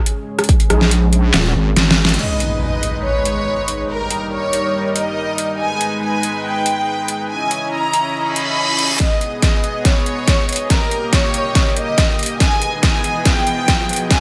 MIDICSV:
0, 0, Header, 1, 10, 480
1, 0, Start_track
1, 0, Key_signature, 5, "minor"
1, 0, Tempo, 425532
1, 550, Time_signature, 4, 2, 24, 8
1, 16019, End_track
2, 0, Start_track
2, 0, Title_t, "Violin section"
2, 0, Program_c, 0, 48
2, 2470, Note_on_c, 0, 75, 92
2, 2892, Note_off_c, 0, 75, 0
2, 2950, Note_on_c, 0, 75, 86
2, 3372, Note_off_c, 0, 75, 0
2, 3430, Note_on_c, 0, 73, 94
2, 4298, Note_off_c, 0, 73, 0
2, 4391, Note_on_c, 0, 70, 85
2, 4813, Note_off_c, 0, 70, 0
2, 4871, Note_on_c, 0, 73, 92
2, 5499, Note_off_c, 0, 73, 0
2, 5591, Note_on_c, 0, 75, 90
2, 6219, Note_off_c, 0, 75, 0
2, 6311, Note_on_c, 0, 80, 95
2, 6733, Note_off_c, 0, 80, 0
2, 6791, Note_on_c, 0, 80, 85
2, 7213, Note_off_c, 0, 80, 0
2, 7271, Note_on_c, 0, 79, 94
2, 8139, Note_off_c, 0, 79, 0
2, 8231, Note_on_c, 0, 80, 88
2, 8652, Note_off_c, 0, 80, 0
2, 8711, Note_on_c, 0, 82, 96
2, 9339, Note_off_c, 0, 82, 0
2, 9431, Note_on_c, 0, 83, 95
2, 10059, Note_off_c, 0, 83, 0
2, 10151, Note_on_c, 0, 75, 96
2, 10572, Note_off_c, 0, 75, 0
2, 10630, Note_on_c, 0, 75, 90
2, 11052, Note_off_c, 0, 75, 0
2, 11111, Note_on_c, 0, 73, 95
2, 11979, Note_off_c, 0, 73, 0
2, 12071, Note_on_c, 0, 70, 90
2, 12492, Note_off_c, 0, 70, 0
2, 12551, Note_on_c, 0, 73, 96
2, 13179, Note_off_c, 0, 73, 0
2, 13271, Note_on_c, 0, 75, 97
2, 13899, Note_off_c, 0, 75, 0
2, 13991, Note_on_c, 0, 80, 101
2, 14412, Note_off_c, 0, 80, 0
2, 14472, Note_on_c, 0, 80, 91
2, 14893, Note_off_c, 0, 80, 0
2, 14951, Note_on_c, 0, 79, 105
2, 15819, Note_off_c, 0, 79, 0
2, 15911, Note_on_c, 0, 80, 88
2, 16019, Note_off_c, 0, 80, 0
2, 16019, End_track
3, 0, Start_track
3, 0, Title_t, "Supersaw synth"
3, 0, Program_c, 1, 81
3, 0, Note_on_c, 1, 56, 84
3, 0, Note_on_c, 1, 61, 77
3, 0, Note_on_c, 1, 68, 95
3, 2426, Note_off_c, 1, 56, 0
3, 2426, Note_off_c, 1, 61, 0
3, 2451, Note_off_c, 1, 68, 0
3, 2471, Note_on_c, 1, 56, 81
3, 2471, Note_on_c, 1, 63, 75
3, 2471, Note_on_c, 1, 71, 89
3, 4372, Note_off_c, 1, 56, 0
3, 4372, Note_off_c, 1, 63, 0
3, 4372, Note_off_c, 1, 71, 0
3, 4390, Note_on_c, 1, 55, 79
3, 4391, Note_on_c, 1, 63, 74
3, 4391, Note_on_c, 1, 70, 89
3, 6291, Note_off_c, 1, 55, 0
3, 6292, Note_off_c, 1, 70, 0
3, 6310, Note_on_c, 1, 71, 90
3, 6311, Note_on_c, 1, 56, 79
3, 8192, Note_off_c, 1, 63, 0
3, 8211, Note_off_c, 1, 71, 0
3, 8212, Note_off_c, 1, 56, 0
3, 8231, Note_on_c, 1, 61, 81
3, 8231, Note_on_c, 1, 64, 75
3, 8231, Note_on_c, 1, 75, 89
3, 10132, Note_off_c, 1, 61, 0
3, 10132, Note_off_c, 1, 64, 0
3, 10132, Note_off_c, 1, 75, 0
3, 10151, Note_on_c, 1, 59, 82
3, 10151, Note_on_c, 1, 68, 75
3, 10151, Note_on_c, 1, 75, 92
3, 12051, Note_off_c, 1, 59, 0
3, 12052, Note_off_c, 1, 68, 0
3, 12071, Note_on_c, 1, 58, 83
3, 12072, Note_on_c, 1, 67, 77
3, 13972, Note_off_c, 1, 58, 0
3, 13972, Note_off_c, 1, 67, 0
3, 13991, Note_on_c, 1, 59, 84
3, 13991, Note_on_c, 1, 68, 78
3, 15866, Note_off_c, 1, 75, 0
3, 15892, Note_off_c, 1, 59, 0
3, 15892, Note_off_c, 1, 68, 0
3, 15911, Note_on_c, 1, 61, 87
3, 15911, Note_on_c, 1, 64, 76
3, 15911, Note_on_c, 1, 75, 91
3, 16019, Note_off_c, 1, 61, 0
3, 16019, Note_off_c, 1, 64, 0
3, 16019, Note_off_c, 1, 75, 0
3, 16019, End_track
4, 0, Start_track
4, 0, Title_t, "Brass ensemble"
4, 0, Program_c, 2, 61
4, 790, Note_on_c, 2, 56, 89
4, 790, Note_on_c, 2, 63, 79
4, 790, Note_on_c, 2, 68, 95
4, 916, Note_off_c, 2, 56, 0
4, 916, Note_off_c, 2, 63, 0
4, 916, Note_off_c, 2, 68, 0
4, 16019, End_track
5, 0, Start_track
5, 0, Title_t, "Wobble bass"
5, 0, Program_c, 3, 39
5, 791, Note_on_c, 3, 34, 98
5, 1492, Note_off_c, 3, 34, 0
5, 1750, Note_on_c, 3, 32, 98
5, 1972, Note_off_c, 3, 32, 0
5, 1991, Note_on_c, 3, 32, 94
5, 2452, Note_off_c, 3, 32, 0
5, 16019, End_track
6, 0, Start_track
6, 0, Title_t, "Wobble bass"
6, 0, Program_c, 4, 39
6, 1511, Note_on_c, 4, 27, 97
6, 1732, Note_off_c, 4, 27, 0
6, 16019, End_track
7, 0, Start_track
7, 0, Title_t, "Impact"
7, 0, Program_c, 5, 103
7, 2471, Note_on_c, 5, 60, 61
7, 4391, Note_off_c, 5, 60, 0
7, 16019, End_track
8, 0, Start_track
8, 0, Title_t, "Reverse cymbal"
8, 0, Program_c, 6, 119
8, 9191, Note_on_c, 6, 60, 71
8, 10151, Note_off_c, 6, 60, 0
8, 16019, End_track
9, 0, Start_track
9, 0, Title_t, "Riser"
9, 0, Program_c, 7, 103
9, 10151, Note_on_c, 7, 60, 70
9, 16019, Note_off_c, 7, 60, 0
9, 16019, End_track
10, 0, Start_track
10, 0, Title_t, "Drums"
10, 71, Note_on_c, 9, 42, 89
10, 184, Note_off_c, 9, 42, 0
10, 435, Note_on_c, 9, 37, 83
10, 435, Note_on_c, 9, 42, 51
10, 493, Note_off_c, 9, 42, 0
10, 493, Note_on_c, 9, 42, 64
10, 548, Note_off_c, 9, 37, 0
10, 551, Note_off_c, 9, 42, 0
10, 551, Note_on_c, 9, 36, 121
10, 551, Note_on_c, 9, 42, 80
10, 663, Note_off_c, 9, 36, 0
10, 663, Note_off_c, 9, 42, 0
10, 676, Note_on_c, 9, 42, 58
10, 788, Note_off_c, 9, 42, 0
10, 790, Note_on_c, 9, 37, 81
10, 790, Note_on_c, 9, 42, 57
10, 903, Note_off_c, 9, 37, 0
10, 903, Note_off_c, 9, 42, 0
10, 915, Note_on_c, 9, 38, 38
10, 1028, Note_off_c, 9, 38, 0
10, 1030, Note_on_c, 9, 42, 87
10, 1143, Note_off_c, 9, 42, 0
10, 1270, Note_on_c, 9, 42, 55
10, 1383, Note_off_c, 9, 42, 0
10, 1510, Note_on_c, 9, 38, 120
10, 1510, Note_on_c, 9, 39, 94
10, 1510, Note_on_c, 9, 42, 87
10, 1623, Note_off_c, 9, 38, 0
10, 1623, Note_off_c, 9, 39, 0
10, 1623, Note_off_c, 9, 42, 0
10, 1990, Note_on_c, 9, 38, 72
10, 1990, Note_on_c, 9, 42, 86
10, 2103, Note_off_c, 9, 38, 0
10, 2103, Note_off_c, 9, 42, 0
10, 2151, Note_on_c, 9, 38, 81
10, 2263, Note_off_c, 9, 38, 0
10, 2311, Note_on_c, 9, 38, 98
10, 2355, Note_on_c, 9, 42, 52
10, 2413, Note_off_c, 9, 42, 0
10, 2413, Note_on_c, 9, 42, 70
10, 2423, Note_off_c, 9, 38, 0
10, 2470, Note_on_c, 9, 49, 75
10, 2526, Note_off_c, 9, 42, 0
10, 2583, Note_off_c, 9, 49, 0
10, 2710, Note_on_c, 9, 42, 73
10, 2823, Note_off_c, 9, 42, 0
10, 3191, Note_on_c, 9, 42, 73
10, 3303, Note_off_c, 9, 42, 0
10, 3671, Note_on_c, 9, 42, 73
10, 3784, Note_off_c, 9, 42, 0
10, 4151, Note_on_c, 9, 42, 76
10, 4264, Note_off_c, 9, 42, 0
10, 4630, Note_on_c, 9, 42, 72
10, 4743, Note_off_c, 9, 42, 0
10, 5111, Note_on_c, 9, 42, 70
10, 5224, Note_off_c, 9, 42, 0
10, 5591, Note_on_c, 9, 42, 75
10, 5703, Note_off_c, 9, 42, 0
10, 6071, Note_on_c, 9, 42, 74
10, 6183, Note_off_c, 9, 42, 0
10, 6551, Note_on_c, 9, 42, 70
10, 6663, Note_off_c, 9, 42, 0
10, 7030, Note_on_c, 9, 42, 68
10, 7143, Note_off_c, 9, 42, 0
10, 7511, Note_on_c, 9, 42, 73
10, 7623, Note_off_c, 9, 42, 0
10, 7990, Note_on_c, 9, 42, 72
10, 8103, Note_off_c, 9, 42, 0
10, 8470, Note_on_c, 9, 42, 67
10, 8583, Note_off_c, 9, 42, 0
10, 8950, Note_on_c, 9, 42, 70
10, 9063, Note_off_c, 9, 42, 0
10, 9431, Note_on_c, 9, 42, 69
10, 9544, Note_off_c, 9, 42, 0
10, 9911, Note_on_c, 9, 42, 72
10, 10023, Note_off_c, 9, 42, 0
10, 10151, Note_on_c, 9, 36, 91
10, 10151, Note_on_c, 9, 38, 46
10, 10151, Note_on_c, 9, 42, 78
10, 10264, Note_off_c, 9, 36, 0
10, 10264, Note_off_c, 9, 38, 0
10, 10264, Note_off_c, 9, 42, 0
10, 10391, Note_on_c, 9, 42, 52
10, 10503, Note_off_c, 9, 42, 0
10, 10630, Note_on_c, 9, 38, 47
10, 10630, Note_on_c, 9, 42, 80
10, 10631, Note_on_c, 9, 36, 91
10, 10743, Note_off_c, 9, 38, 0
10, 10743, Note_off_c, 9, 42, 0
10, 10744, Note_off_c, 9, 36, 0
10, 10870, Note_on_c, 9, 42, 50
10, 10983, Note_off_c, 9, 42, 0
10, 11111, Note_on_c, 9, 36, 97
10, 11111, Note_on_c, 9, 38, 51
10, 11111, Note_on_c, 9, 42, 77
10, 11223, Note_off_c, 9, 38, 0
10, 11223, Note_off_c, 9, 42, 0
10, 11224, Note_off_c, 9, 36, 0
10, 11351, Note_on_c, 9, 42, 53
10, 11464, Note_off_c, 9, 42, 0
10, 11591, Note_on_c, 9, 36, 94
10, 11591, Note_on_c, 9, 38, 50
10, 11591, Note_on_c, 9, 42, 82
10, 11703, Note_off_c, 9, 38, 0
10, 11703, Note_off_c, 9, 42, 0
10, 11704, Note_off_c, 9, 36, 0
10, 11831, Note_on_c, 9, 42, 51
10, 11873, Note_off_c, 9, 42, 0
10, 11873, Note_on_c, 9, 42, 63
10, 11911, Note_off_c, 9, 42, 0
10, 11911, Note_on_c, 9, 42, 82
10, 12024, Note_off_c, 9, 42, 0
10, 12071, Note_on_c, 9, 36, 98
10, 12071, Note_on_c, 9, 38, 49
10, 12071, Note_on_c, 9, 42, 76
10, 12184, Note_off_c, 9, 36, 0
10, 12184, Note_off_c, 9, 38, 0
10, 12184, Note_off_c, 9, 42, 0
10, 12311, Note_on_c, 9, 42, 52
10, 12424, Note_off_c, 9, 42, 0
10, 12551, Note_on_c, 9, 36, 91
10, 12551, Note_on_c, 9, 38, 54
10, 12551, Note_on_c, 9, 42, 75
10, 12663, Note_off_c, 9, 38, 0
10, 12663, Note_off_c, 9, 42, 0
10, 12664, Note_off_c, 9, 36, 0
10, 12791, Note_on_c, 9, 42, 53
10, 12904, Note_off_c, 9, 42, 0
10, 13031, Note_on_c, 9, 36, 96
10, 13031, Note_on_c, 9, 38, 56
10, 13031, Note_on_c, 9, 42, 80
10, 13144, Note_off_c, 9, 36, 0
10, 13144, Note_off_c, 9, 38, 0
10, 13144, Note_off_c, 9, 42, 0
10, 13271, Note_on_c, 9, 42, 51
10, 13384, Note_off_c, 9, 42, 0
10, 13511, Note_on_c, 9, 36, 97
10, 13511, Note_on_c, 9, 38, 57
10, 13511, Note_on_c, 9, 42, 79
10, 13624, Note_off_c, 9, 36, 0
10, 13624, Note_off_c, 9, 38, 0
10, 13624, Note_off_c, 9, 42, 0
10, 13751, Note_on_c, 9, 42, 48
10, 13793, Note_off_c, 9, 42, 0
10, 13793, Note_on_c, 9, 42, 65
10, 13831, Note_off_c, 9, 42, 0
10, 13831, Note_on_c, 9, 42, 77
10, 13944, Note_off_c, 9, 42, 0
10, 13991, Note_on_c, 9, 36, 94
10, 13991, Note_on_c, 9, 38, 57
10, 13991, Note_on_c, 9, 42, 72
10, 14104, Note_off_c, 9, 36, 0
10, 14104, Note_off_c, 9, 38, 0
10, 14104, Note_off_c, 9, 42, 0
10, 14231, Note_on_c, 9, 42, 48
10, 14344, Note_off_c, 9, 42, 0
10, 14471, Note_on_c, 9, 36, 92
10, 14471, Note_on_c, 9, 38, 59
10, 14471, Note_on_c, 9, 42, 75
10, 14584, Note_off_c, 9, 36, 0
10, 14584, Note_off_c, 9, 38, 0
10, 14584, Note_off_c, 9, 42, 0
10, 14711, Note_on_c, 9, 42, 49
10, 14824, Note_off_c, 9, 42, 0
10, 14951, Note_on_c, 9, 36, 100
10, 14951, Note_on_c, 9, 38, 62
10, 14951, Note_on_c, 9, 42, 76
10, 15064, Note_off_c, 9, 36, 0
10, 15064, Note_off_c, 9, 38, 0
10, 15064, Note_off_c, 9, 42, 0
10, 15191, Note_on_c, 9, 42, 50
10, 15304, Note_off_c, 9, 42, 0
10, 15431, Note_on_c, 9, 36, 94
10, 15431, Note_on_c, 9, 38, 63
10, 15431, Note_on_c, 9, 42, 75
10, 15543, Note_off_c, 9, 38, 0
10, 15543, Note_off_c, 9, 42, 0
10, 15544, Note_off_c, 9, 36, 0
10, 15671, Note_on_c, 9, 42, 46
10, 15713, Note_off_c, 9, 42, 0
10, 15713, Note_on_c, 9, 42, 61
10, 15751, Note_off_c, 9, 42, 0
10, 15751, Note_on_c, 9, 42, 76
10, 15864, Note_off_c, 9, 42, 0
10, 15911, Note_on_c, 9, 36, 100
10, 15911, Note_on_c, 9, 38, 65
10, 15911, Note_on_c, 9, 42, 72
10, 16019, Note_off_c, 9, 36, 0
10, 16019, Note_off_c, 9, 38, 0
10, 16019, Note_off_c, 9, 42, 0
10, 16019, End_track
0, 0, End_of_file